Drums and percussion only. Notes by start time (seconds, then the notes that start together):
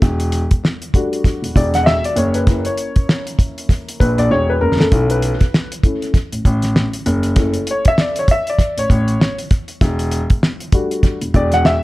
0.02 kick, closed hi-hat
0.20 closed hi-hat
0.32 closed hi-hat
0.51 kick, closed hi-hat
0.65 snare
0.82 closed hi-hat
0.94 kick, closed hi-hat
1.13 closed hi-hat
1.24 kick, closed hi-hat
1.44 closed hi-hat
1.56 kick, closed hi-hat
1.74 snare, closed hi-hat
1.87 snare
2.04 closed hi-hat
2.16 closed hi-hat
2.34 closed hi-hat
2.47 kick, closed hi-hat
2.65 closed hi-hat
2.78 closed hi-hat
2.96 kick, closed hi-hat
3.09 snare
3.27 closed hi-hat
3.39 kick, closed hi-hat
3.58 closed hi-hat
3.69 kick, closed hi-hat
3.89 closed hi-hat
4.00 kick, closed hi-hat
4.18 closed hi-hat
4.81 snare
4.92 kick, closed hi-hat
5.10 closed hi-hat
5.22 closed hi-hat
5.41 kick, closed hi-hat
5.54 snare
5.72 closed hi-hat
5.83 kick, closed hi-hat
6.02 closed hi-hat
6.14 kick, closed hi-hat
6.32 closed hi-hat
6.45 kick, closed hi-hat
6.62 snare, closed hi-hat
6.76 snare
6.93 closed hi-hat
7.06 closed hi-hat
7.23 closed hi-hat
7.36 kick, closed hi-hat
7.54 closed hi-hat
7.67 closed hi-hat
7.85 kick, closed hi-hat
7.98 snare
8.16 closed hi-hat
8.28 kick, closed hi-hat
8.47 closed hi-hat
8.59 kick, closed hi-hat
8.78 closed hi-hat
8.90 kick, closed hi-hat
9.08 closed hi-hat
9.21 snare
9.39 closed hi-hat
9.51 kick, snare, closed hi-hat
9.68 closed hi-hat
9.81 kick, closed hi-hat
9.99 closed hi-hat
10.11 closed hi-hat
10.30 kick, closed hi-hat
10.43 snare
10.60 closed hi-hat
10.72 kick, closed hi-hat
10.91 closed hi-hat
11.03 kick, closed hi-hat
11.21 closed hi-hat
11.34 kick, closed hi-hat
11.52 snare, closed hi-hat
11.65 snare